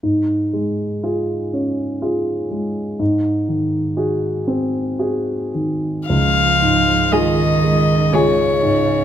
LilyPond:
<<
  \new Staff \with { instrumentName = "Violin" } { \time 3/4 \key des \major \tempo 4 = 60 r2. | r2. | f''4 ees''4 des''4 | }
  \new Staff \with { instrumentName = "Violin" } { \time 3/4 \key des \major r2. | r2. | r4 aes'4 aes'4 | }
  \new Staff \with { instrumentName = "Grand piano" } { \time 3/4 \key des \major aes,8 aes8 <f' aes'>8 des'8 <f' aes'>8 aes8 | aes,8 ees8 <ges' aes'>8 c'8 <ges' aes'>8 ees8 | des,8 aes,8 <aes f' aes'>8 aes8 <aes f' aes'>8 aes,8 | }
  \new Staff \with { instrumentName = "Viola" } { \clef bass \time 3/4 \key des \major r2. | r2. | r4 aes4 aes4 | }
  \new Staff \with { instrumentName = "Cello" } { \clef bass \time 3/4 \key des \major r2. | r2. | f4 ees4 des4 | }
>>